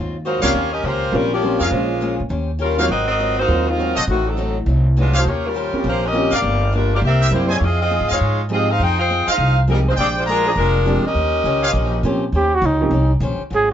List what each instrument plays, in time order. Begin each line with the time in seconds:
Already playing: upright bass D#2, steel-string acoustic guitar G#2 F#3
0.00 steel-string acoustic guitar C4 F4
0.25 steel-string acoustic guitar G#2 F#3 C4 F4, saxophone section A#3 D#4 F#4 C5
0.42 upright bass C#2, grand piano G3 A#3 C4 C#4 F4, saxophone section A#3 F4 G4 C#5, trumpet section G4 C5 C#5 F5
0.54 upright bass D#2, steel-string acoustic guitar D#3 C#4 G4 C5
0.73 saxophone section C#4 G4 A#4 D#5
0.83 upright bass C#2, steel-string acoustic guitar D#3 C#4 G4 C5, saxophone section A#3 F4 G4 C5
1.11 upright bass A#1, steel-string acoustic guitar D#3 C#4 G4 C5, grand piano G3 A#3 C4 C#4 F4, saxophone section G3 C#4 F4 A#4
1.33 saxophone section F3 A#3 C#4 G4
1.42 steel-string acoustic guitar D#3 C#4 G4 C5, grand piano G3 A#3 C4 C#4 F4
1.60 upright bass F2, saxophone section G#3 A#3 C#4 F4, trumpet section G#4 A#4 C#5 F5
1.71 upright bass A#1, steel-string acoustic guitar A#2 G#3 C#4 F4, grand piano G#3 A#3 C#4 F4 C5
2.01 steel-string acoustic guitar A#2 G#3 C#4 F4
2.20 upright bass A#2
2.29 upright bass D#2, steel-string acoustic guitar D#3 C#4 G4 C5
2.59 steel-string acoustic guitar D#3 C#4 G4 C5, saxophone section G3 C#4 F4 A#4
2.77 grand piano F#3 A#3 C4 D#4 F4, saxophone section A#3 F4 G4 C#5, trumpet section F#4 A#4 C5 F5
2.89 upright bass G#1, steel-string acoustic guitar G#2 F#3 C4 F4, saxophone section C4 F#4 A#4 D#5
3.08 saxophone section C4 F#4 A#4 D#5
3.19 steel-string acoustic guitar G#2 F#3 C4 F4
3.39 saxophone section A#3 D#4 F#4 C5
3.48 upright bass D#2, steel-string acoustic guitar G#2 F#3 C4, grand piano F#3 A#3 C4 D#4 F4
3.52 steel-string acoustic guitar F4
3.68 saxophone section A#3 C4 D#4 F4
3.78 steel-string acoustic guitar G#2 F#3 C4 F4, grand piano F#3 A#3 C4 D#4 F#4
3.96 upright bass A#1, trumpet section F#4 A4 C5 D#5
4.07 upright bass A1, steel-string acoustic guitar A2 F#3 C4 D#4, saxophone section D#3 A3 C4 F#4
4.28 saxophone section F#3 C4 D#4 A4
4.37 steel-string acoustic guitar A2 F#3 C4 D#4
4.66 upright bass C2, steel-string acoustic guitar A2 F#3 C4 D#4
4.97 steel-string acoustic guitar A2 F#3 C4 D#4, saxophone section G#3 D4 F4 B4
5.14 trumpet section G4 C5 C#5 F5
5.18 saxophone section A3 D#4 F#4 C5
5.25 upright bass D#2, steel-string acoustic guitar D#3 C#4 G4 C5, saxophone section A#3 F4 G4 C#5
5.46 saxophone section G3 C#4 F4 A#4
5.54 steel-string acoustic guitar D#3 C#4 G4 C5
5.73 grand piano A#3 C4 C#4 F4 G4, muted upright bass stroke
5.84 upright bass A#1, steel-string acoustic guitar D#3 C#4 G4 C5, saxophone section A#3 F4 G4 C5
6.05 saxophone section C#4 G4 A#4 D#5
6.13 steel-string acoustic guitar D#3 C#4 G4 C5, grand piano A#3 C4 C#4 F4 G4
6.31 upright bass G#1, saxophone section A#3 F4 G4 D5, trumpet section G4 A#4 D5 F5
6.42 upright bass G1, steel-string acoustic guitar G2 F3 A#3 D4
6.72 steel-string acoustic guitar G2 F3 A#3 D4, saxophone section G3 D4 F4 A#4
6.95 saxophone section A#3 F4 G4 D5
7.01 upright bass C2, steel-string acoustic guitar C3 G3 A#3 E4, saxophone section C4 G4 A#4 E5
7.21 trumpet section G4 A#4 C5 E5
7.31 upright bass F#2, steel-string acoustic guitar C3 G3 A#3 E4, grand piano G3 A#3 C4 E4 G4, saxophone section A#3 E4 G4 C5
7.47 trumpet section G#4 C5 D#5 G#5, saxophone section C5
7.53 saxophone section A#3 E4 G4 C#5
7.61 upright bass F2, steel-string acoustic guitar F3 C4 D#4 G#4, saxophone section F4 G#4 D#5
7.65 saxophone section C4
7.82 saxophone section C4 F4 G#4 D#5
7.90 steel-string acoustic guitar F3 C4 D#4 G#4
8.00 upright bass G#2
8.09 upright bass E2, trumpet section G#4 C5 D#5 F5
8.13 saxophone section G#3 D#4 F4 C#5
8.19 upright bass G#2, steel-string acoustic guitar F3 C4 D#4 G#4
8.49 steel-string acoustic guitar F3 C4 D#4 G#4, grand piano F3 G#3 C4 D#4 G4, saxophone section C4 F4 G#4 D#5
8.71 saxophone section D#4 G#4 C5 F5
8.79 upright bass F2, steel-string acoustic guitar F3 C4 D#4 G#4, saxophone section D#4 G#4 C5 G5
8.99 saxophone section F4 C5 D#5 G5
9.09 steel-string acoustic guitar F3 C4 D#4 G#4
9.27 saxophone section D#4 C5 F5, trumpet section G#4 C5 D#5 F5, muted upright bass stroke
9.31 saxophone section G#4
9.38 upright bass C2, steel-string acoustic guitar F3 C4 D#4 G#4
9.68 steel-string acoustic guitar F3 C4 D#4 G#4, grand piano F3 G#3 C4 D#4 G4, saxophone section G3 C4 D#4 A#4
9.89 saxophone section G#3 D#4 F4 C5
9.97 upright bass A#1, steel-string acoustic guitar A#2 G#3 D4 G4, saxophone section C4 F4 G#4 D5, trumpet section G#4 C5 D5 G5
10.17 saxophone section G#3 D4 F4 C5
10.26 steel-string acoustic guitar A#2 G#3 D4 G4, saxophone section G#3 D4 F4 A#4, trumpet section G#4 C5 D5 A#5
10.47 saxophone section F3 C4 D4 G#4
10.56 upright bass F1, steel-string acoustic guitar A#2 G#3 D4 G4, saxophone section G#3 D4 F4 A#4
10.85 steel-string acoustic guitar A#2 G#3 D4 G4, grand piano F3 G#3 C4 D4 G4
11.04 saxophone section C#4 G4 A#4 D#5, muted upright bass stroke
11.14 upright bass D#2, steel-string acoustic guitar D#3 C#4 G4 C5
11.44 upright bass C#2, steel-string acoustic guitar D#3 C#4 G4 C5
11.63 trumpet section G4 C5 C#5 F5
11.73 upright bass A#1, steel-string acoustic guitar D#3 C#4 G4 C5
12.03 upright bass A#2, steel-string acoustic guitar D#3 C#4 G4 C5, grand piano F3 A#3 C4 C#4 G4
12.32 upright bass D#2, steel-string acoustic guitar D#3 C#4 G4 C5, trumpet G4
12.55 trumpet F#4
12.62 upright bass C#2, steel-string acoustic guitar D#3 C#4 G4 C5
12.66 trumpet D#4
12.80 grand piano F3 A#3 C4 C#4 G4
12.91 upright bass C2, steel-string acoustic guitar D#3 C#4 G4 C5
13.20 upright bass A#1, steel-string acoustic guitar D#3 C#4 G4 C5
13.39 muted upright bass stroke
13.50 upright bass G#1, steel-string acoustic guitar G#2 F#3 C4 F4
13.55 trumpet G#4